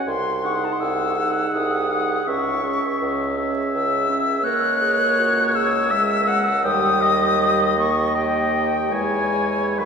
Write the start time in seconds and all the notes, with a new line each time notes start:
0.07 C2 C6
0.43 D#4 G#4 F#5 C#6
0.55 C6
0.64 A5
0.73 C6
0.80 C2 E6
1.18 D#4 G#4 F#5
1.54 C2 D#6
1.90 D#4 G#4 F#5
2.26 C#2 C#4 G#4 E5 C#6
2.63 C#4 G#4 E5
3.01 C#2
3.37 C#4 G#4 E5
3.74 C#2 E6
4.09 C#4 G#4 E5
4.43 C#2 A#3 A#4 C#5 F#6
4.82 G#4
5.19 F#4
5.55 G#4 E6
5.91 G#3 A#4 E5
6.27 F#5
6.64 D#2 G3 G4 G5 D#6
7.02 D#5
7.40 G3
7.77 A#3 C#6
8.14 G4 D#5 G5
8.89 E2 G#3 E4 C#5 G#5
9.78 D#2 F#3 B4 C#6